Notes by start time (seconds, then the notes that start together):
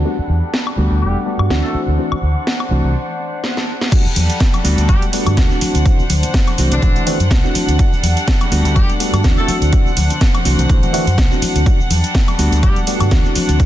Already playing: D4
0.05 G3 A3 B3 D4 F#4 A4 F#5
0.19 muted fingered electric bass stroke
0.29 E2
0.54 snare
0.67 high woodblock
0.77 D2 G3 A3 B3 D4 F#4
0.91 D2
1.02 E1 G3 G4
1.25 G3 A3 B3 D4 F#4
1.39 G2, high woodblock
1.50 D2 E3 A3 C4 D4 F#4, snare
1.64 A3 A4
1.74 D4 C5, muted fingered electric bass stroke
1.88 D2
1.98 E3 A3 C4 D4 F#4
2.12 muted fingered electric bass stroke, high woodblock
2.23 D2
2.47 snare
2.60 high woodblock
2.70 C2 E3 A3 C4 D4 F#4
2.84 C2
3.44 snare
3.57 snare
3.81 snare
3.92 G3 A3 B3 D4 F#4 A4 F#5, kick, closed hi-hat, crash, cabasa, shaker
4.05 muted fingered electric bass stroke, cabasa, shaker
4.16 E2, open hi-hat, high conga, cabasa
4.30 closed hi-hat, cabasa, shaker
4.40 kick, snare, closed hi-hat, cabasa, shaker
4.54 closed hi-hat, high conga, cabasa, high woodblock, shaker
4.64 D2 G3 A3 B3 D4 F#4, open hi-hat, cabasa
4.78 D2, closed hi-hat, cabasa, shaker
4.88 E1 G3 G4, kick, closed hi-hat, high conga, cabasa, shaker
5.02 closed hi-hat, cabasa, shaker
5.13 G3 A3 B3 D4 F#4, open hi-hat, cabasa
5.26 G2, closed hi-hat, high conga, low conga, cabasa, high woodblock, shaker
5.37 D2 E3 A3 C4 D4 F#4, kick, snare, closed hi-hat, cabasa, shaker
5.50 cabasa, shaker
5.61 C5, muted fingered electric bass stroke, open hi-hat, high conga, cabasa
5.75 D2, closed hi-hat, cabasa, shaker
5.85 E3 A3 C4 D4 F#4, kick, closed hi-hat, cabasa, shaker
5.99 muted fingered electric bass stroke, cabasa, shaker
6.09 D2, open hi-hat, high conga, cabasa
6.23 closed hi-hat, low conga, cabasa, shaker
6.34 kick, snare, closed hi-hat, cabasa, shaker
6.47 closed hi-hat, high conga, cabasa, high woodblock, shaker
6.58 C2 E3 A3 C4 D4 F#4, open hi-hat, cabasa
6.71 C2 D3 D4, closed hi-hat, low conga, cabasa, shaker
6.82 A1 E3 A3 C4 D4 F#4, kick, closed hi-hat, high conga, cabasa, shaker
6.96 E3 A3 C4 D4 F#4, closed hi-hat, cabasa, shaker
7.06 E3 A3 C4 D4 F#4, open hi-hat, low conga, cabasa
7.20 F#2, closed hi-hat, high conga, cabasa, shaker
7.30 C2, kick, snare, closed hi-hat, cabasa, shaker
7.44 E3 A3 C4 D4 F#4, cabasa, shaker
7.55 muted fingered electric bass stroke, open hi-hat, high conga, cabasa
7.68 D2, closed hi-hat, cabasa, shaker
7.79 G3 A3 B3 D4 F#4 A4, kick, closed hi-hat, cabasa, shaker
7.92 muted fingered electric bass stroke, cabasa, shaker
8.03 E2, open hi-hat, high conga, cabasa
8.17 closed hi-hat, cabasa, shaker
8.28 kick, snare, closed hi-hat, cabasa, shaker
8.40 closed hi-hat, high conga, cabasa, high woodblock, shaker
8.51 D2 G3 A3 B3 D4 F#4, open hi-hat, cabasa
8.65 D2, closed hi-hat, cabasa, shaker
8.76 E1 G3 G4, kick, closed hi-hat, high conga, cabasa, shaker
8.90 closed hi-hat, cabasa, shaker
9.00 G3 A3 B3 D4 F#4, open hi-hat, cabasa
9.13 G2, closed hi-hat, high conga, low conga, cabasa, high woodblock, shaker
9.24 D2 E3 A3 C4 D4 F#4, kick, snare, closed hi-hat, cabasa, shaker
9.38 A3 A4, cabasa, shaker
9.48 C5, muted fingered electric bass stroke, open hi-hat, high conga, cabasa
9.62 D2, closed hi-hat, cabasa, shaker
9.72 E3 A3 C4 D4 F#4, kick, closed hi-hat, cabasa
9.86 muted fingered electric bass stroke, cabasa, shaker
9.97 D2, open hi-hat, high conga, cabasa
10.10 closed hi-hat, low conga, cabasa, shaker
10.20 kick, snare, closed hi-hat, cabasa, shaker
10.35 closed hi-hat, high conga, cabasa, high woodblock, shaker
10.45 C2 E3 A3 C4 D4 F#4, open hi-hat, cabasa
10.58 C2, closed hi-hat, low conga, cabasa, shaker
10.69 A1 E3 A3 C4 D4 F#4, kick, closed hi-hat, high conga, cabasa, shaker
10.83 E3 A3 C4 D4 F#4, closed hi-hat, cabasa, shaker
10.93 E3 A3 C4 D4 F#4, open hi-hat, low conga, cabasa
11.07 F#2, closed hi-hat, high conga, cabasa, shaker
11.18 C2, kick, snare, closed hi-hat, cabasa, shaker
11.31 E3 A3 C4 D4 F#4, cabasa, shaker
11.42 muted fingered electric bass stroke, open hi-hat, high conga, cabasa
11.55 D2, closed hi-hat, cabasa, shaker
11.66 G3 A3 B3 D4 F#4 A4, kick, closed hi-hat, cabasa, shaker
11.80 muted fingered electric bass stroke, cabasa, shaker
11.90 E2, open hi-hat, high conga, cabasa
12.04 closed hi-hat, cabasa, shaker
12.15 kick, snare, closed hi-hat, cabasa, shaker
12.28 closed hi-hat, high conga, cabasa, high woodblock, shaker
12.39 D2 G3 A3 B3 D4 F#4, open hi-hat, cabasa
12.52 D2, closed hi-hat, cabasa, shaker
12.63 E1 G3 G4, kick, closed hi-hat, high conga, cabasa, shaker
12.76 closed hi-hat, cabasa, shaker
12.87 G3 A3 B3 D4 F#4, open hi-hat, cabasa
13.01 G2, closed hi-hat, high conga, low conga, cabasa, high woodblock, shaker
13.11 D2 E3 A3 C4 D4 F#4, kick, snare, closed hi-hat, cabasa, shaker
13.25 cabasa, shaker
13.36 C5, muted fingered electric bass stroke, open hi-hat, high conga, cabasa
13.49 D2, closed hi-hat, cabasa, shaker
13.59 E3 A3 C4 D4 F#4, kick, closed hi-hat, cabasa, shaker